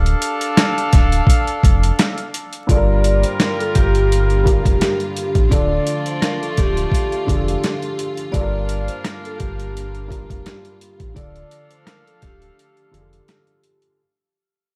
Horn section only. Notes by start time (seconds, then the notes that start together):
Already playing: D4 A4 F5
2.69 G3 F4 A#4
5.51 A3 F4 D5
8.33 D4 A#4 F5
11.16 D4 A4 F5